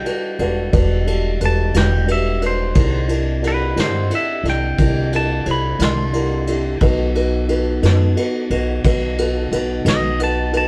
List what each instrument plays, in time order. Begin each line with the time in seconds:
Already playing: tonewheel organ G3 D4 E4 G4, clean electric guitar G5
0.05 upright piano D4 F#4 G4 B4, ride
0.39 upright bass E1, upright piano D4 F#4 G4 B4, ride
0.73 upright bass E1, upright piano D4 F#4 G4 B4, kick, ride
1.06 upright piano D4 F#4 G4 A4, ride
1.40 upright bass E1, upright piano D4 F#4 G4 B4, ride
1.46 clean electric guitar A5
1.74 upright bass E1, upright piano D4 F#4 G4 B4, snare, ride
1.78 clean electric guitar G5
2.07 upright piano D4 F#4 G4 B4, ride
2.12 clean electric guitar E5
2.41 upright piano D4 F#4 G4 B4, ride
2.46 clean electric guitar C5
2.74 upright bass C2, tonewheel organ A#3 D#4 F4 G#4, upright piano D4 E4 G4 A#4, kick, ride
3.08 tonewheel organ C4 D4 E4 G4, upright piano D4 E4 G4 A#4, ride
3.42 upright piano D4 E4 G4 A#4, ride
3.48 clean electric guitar B4
3.75 upright bass G2, upright piano D4 E4 G4 A#4, ride
3.79 clean electric guitar C5, snare
4.10 upright piano D4 E4 G4 A4, ride
4.15 clean electric guitar E5
4.43 upright bass C2, upright piano D4 E4 G4 A4, snare, ride
4.50 clean electric guitar G5
4.78 upright bass C2, upright piano D4 E4 G4 A#4, kick, ride
5.12 upright piano D4 E4 G4 A#4, ride
5.16 clean electric guitar A5
5.46 upright bass C2, upright piano D4 E4 G4 C5, ride
5.51 clean electric guitar B5
5.79 upright bass C2, upright piano D4 E4 G4 A#4, snare, ride
5.84 clean electric guitar C6
6.13 upright piano D4 E4 G4 A#4, ride
6.47 upright piano D4 E4 G4 A4, ride
6.81 upright bass B1, tonewheel organ B3 D#4 F#4 A4, upright piano D#4 F#4 A4 B4, kick, ride
7.15 upright piano D#4 F#4 A4 B4, ride
7.48 upright piano D#4 F#4 A4 B4, ride
7.82 upright bass F#2, upright piano D#4 F#4 A4 B4, snare, ride
8.16 upright piano D#4 F#4 A4 B4, ride
8.50 upright bass B1, upright piano D#4 F#4 A4 B4, ride
8.84 upright bass B1, upright piano D#4 F#4 A4 B4, kick, ride
9.18 upright piano D#4 F#4 A4 B4, ride
9.51 upright bass B1, upright piano D#4 F#4 A4 B4, ride
9.85 upright bass B1, upright piano D#4 F#4 A4 B4, snare, ride
9.89 clean electric guitar D#5
10.19 upright piano D#4 F#4 A4 B4, ride
10.23 clean electric guitar A5
10.52 upright piano D#4 F#4 A4 B4, ride
10.57 clean electric guitar A5